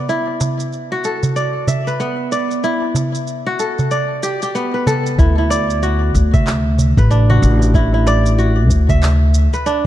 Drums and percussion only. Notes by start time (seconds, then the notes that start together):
0.09 shaker
0.27 darbuka ka
0.41 darbuka tek, darbuka dum, shaker
0.60 shaker
0.73 shaker
0.91 darbuka ka
1.04 shaker
1.23 darbuka dum, shaker
1.36 shaker
1.67 darbuka dum, shaker
1.87 shaker
2.00 shaker
2.32 shaker
2.51 shaker
2.64 shaker
2.82 darbuka ka
2.94 darbuka tek, darbuka dum, shaker
3.15 shaker
3.27 shaker
3.59 shaker
3.78 darbuka dum, shaker
3.91 shaker
4.23 shaker
4.42 shaker
4.55 shaker
4.87 darbuka dum, shaker
5.06 shaker
5.19 kick, shaker
5.38 darbuka ka
5.50 darbuka tek, shaker
5.70 shaker
5.83 shaker
6.02 darbuka ka
6.14 kick, shaker
6.34 kick, darbuka dum, shaker
6.47 clap, shaker
6.79 darbuka dum, shaker
6.97 kick, shaker
7.11 shaker
7.30 darbuka dum
7.43 shaker
7.62 shaker
7.74 kick, shaker
7.93 darbuka ka
8.07 darbuka tek, shaker
8.26 shaker
8.39 shaker
8.70 kick, shaker
8.89 kick, darbuka dum, shaker
9.03 clap, shaker
9.34 shaker
9.53 shaker
9.66 shaker